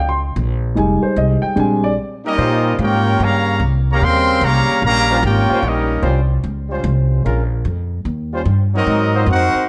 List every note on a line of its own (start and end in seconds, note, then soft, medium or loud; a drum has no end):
0.00 0.35 C#2 medium
0.00 0.10 G5 medium
0.09 0.17 C6 medium
0.36 0.76 A#1 loud
0.75 1.02 F1 medium
0.75 1.53 G3 medium
0.75 1.54 G#3 soft
0.75 1.54 D#4 medium
0.75 1.04 G#5 medium
1.03 1.17 C5 medium
1.03 muted upright bass stroke soft
1.16 1.42 C2 medium
1.16 1.44 D#5 medium
1.42 1.56 G5 medium
1.42 muted upright bass stroke soft
1.56 1.97 A#1 medium
1.56 1.88 G3 medium
1.56 1.88 G#3 soft
1.56 1.88 C4 soft
1.56 1.88 D4 medium
1.56 1.85 G#5 medium
1.84 1.92 D5 medium
2.23 2.75 G3 medium
2.23 2.75 A#3 medium
2.23 2.76 C#4 medium
2.23 2.75 D#4 medium
2.23 2.76 G4 medium
2.23 2.76 A#4 medium
2.23 2.76 D#5 loud
2.38 2.78 A#2 medium
2.38 3.01 G3 loud
2.38 3.01 C#4 loud
2.38 3.01 F4 medium
2.38 3.01 C5 loud
2.79 3.18 G#2 loud
2.79 3.20 A#3 medium
2.79 3.20 C#4 medium
2.79 3.21 F4 medium
2.79 3.20 G4 medium
2.79 3.21 A#4 medium
2.79 3.22 G5 loud
2.83 3.21 C#5 medium
3.20 3.59 G2 medium
3.20 3.62 C#3 loud
3.20 3.62 G3 loud
3.20 3.62 A#3 loud
3.20 3.62 G4 loud
3.20 3.61 C#5 loud
3.20 3.61 F5 loud
3.20 3.62 A#5 loud
3.60 3.99 C2 loud
3.91 4.02 C#3 medium
3.91 4.02 G3 medium
3.91 4.02 A#3 medium
3.91 4.02 G4 medium
3.91 4.02 C#5 medium
3.91 4.01 F5 loud
3.91 4.02 A#5 loud
4.01 4.40 D#2 medium
4.01 4.43 C#3 loud
4.01 4.43 G3 loud
4.01 4.43 C4 loud
4.01 4.42 A#4 loud
4.01 4.42 F5 loud
4.01 4.42 G5 loud
4.01 4.42 C6 loud
4.41 4.66 C2 loud
4.41 4.83 G4 loud
4.41 4.84 C#5 medium
4.41 4.83 F5 loud
4.41 4.83 A#5 loud
4.45 4.83 C#3 medium
4.45 4.83 G3 medium
4.45 4.83 A#3 medium
4.68 muted upright bass stroke soft
4.82 5.21 A#1 loud
4.82 5.21 C#3 loud
4.82 5.21 G3 loud
4.82 5.21 A#3 loud
4.82 5.21 G4 loud
4.82 5.21 C#5 medium
4.82 5.21 F5 loud
4.82 5.21 A#5 loud
5.10 5.20 G3 loud
5.10 5.19 C#4 loud
5.10 5.19 F4 loud
5.10 5.19 C5 loud
5.23 5.47 G#1 loud
5.23 5.63 A#3 medium
5.23 5.65 C#4 medium
5.23 5.65 F4 medium
5.23 5.65 G4 medium
5.23 5.65 A#4 medium
5.23 5.65 G5 loud
5.27 5.65 C#5 medium
5.50 5.59 G3 loud
5.50 5.59 C#4 loud
5.50 5.59 F4 loud
5.50 5.59 C5 loud
5.50 muted upright bass stroke soft
5.63 6.02 A#1 medium
5.63 6.05 G3 medium
5.63 6.04 A#3 medium
5.63 6.04 D#4 medium
5.63 6.05 G4 medium
5.63 6.05 A#4 medium
5.63 6.05 D#5 medium
5.67 6.05 C#4 medium
6.02 6.42 C2 loud
6.02 6.21 G3 loud
6.02 6.21 C#4 loud
6.02 6.21 F4 medium
6.02 6.21 C5 loud
6.44 6.83 C#2 medium
6.69 7.21 G3 loud
6.69 7.22 C#4 medium
6.69 7.21 F4 medium
6.69 7.22 C5 loud
6.84 7.23 C2 loud
7.24 7.64 A#1 medium
7.24 7.43 G#3 medium
7.24 7.43 C#4 medium
7.24 7.43 F4 medium
7.24 7.43 A#4 loud
7.65 8.04 F2 medium
8.05 8.45 D#2 medium
8.33 8.42 G3 loud
8.33 8.43 C#4 medium
8.33 8.42 F4 medium
8.33 8.43 C5 loud
8.45 8.85 G2 loud
8.74 9.24 F#3 medium
8.74 9.24 C4 medium
8.74 9.25 C4 medium
8.74 9.24 D#4 medium
8.74 9.25 F#4 medium
8.74 9.25 A#4 medium
8.74 9.25 D#5 loud
8.87 9.26 G#2 loud
9.15 9.24 A#3 loud
9.15 9.24 F4 medium
9.15 9.24 F#4 medium
9.15 9.24 C5 loud
9.26 9.52 F2 medium
9.26 9.65 C4 medium
9.26 9.66 D#4 medium
9.26 9.65 F#4 medium
9.31 9.67 D#4 medium
9.31 9.67 A#4 medium
9.31 9.67 C5 medium
9.31 9.67 F#5 loud
9.55 muted upright bass stroke soft